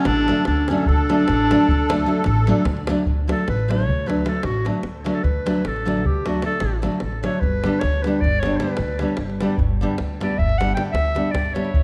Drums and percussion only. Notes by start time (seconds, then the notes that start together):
0.05 davul high
0.17 davul high
0.28 davul high
0.37 davul high
0.45 davul high
0.57 davul high
0.68 davul high
0.78 davul high
0.86 davul low
0.98 davul high
1.10 davul high
1.28 davul high
1.51 davul high
1.60 davul high
1.68 davul low
1.90 davul high
1.99 davul high
2.24 davul high
2.37 davul high
2.47 davul high
2.57 davul high
2.65 davul high, davul low
2.77 davul high
2.87 davul high
2.97 davul high
3.06 davul low
3.29 davul high
3.39 davul high
3.48 davul high
3.60 davul high
3.71 davul high
3.80 davul high
3.89 davul low
4.10 davul high
4.26 davul high
4.35 davul high
4.43 davul high
4.66 davul high
4.75 davul high
4.83 davul high
5.06 davul high
5.24 davul low
5.47 davul high
5.56 davul high
5.65 davul high
5.76 davul high
5.88 davul high
5.98 davul high
6.05 davul low
6.26 davul high
6.42 davul high
6.52 davul high
6.60 davul high
6.83 davul high
6.92 davul high
7.00 davul high
7.12 davul high
7.24 davul high
7.41 davul low
7.64 davul high
7.73 davul high
7.81 davul high
7.93 davul high
8.04 davul high
8.13 davul high
8.22 davul low
8.43 davul high
8.60 davul high
8.68 davul high
8.77 davul high
8.99 davul high
9.08 davul high
9.17 davul high
9.30 davul high
9.41 davul high
9.58 davul low
9.98 davul high
10.21 davul high
10.39 davul low
10.49 davul high
10.61 davul high
10.77 davul high
10.85 davul high
10.95 davul high
11.05 davul high
11.16 davul high
11.35 davul high, davul low
11.46 davul high
11.56 davul high
11.65 davul high
11.74 davul low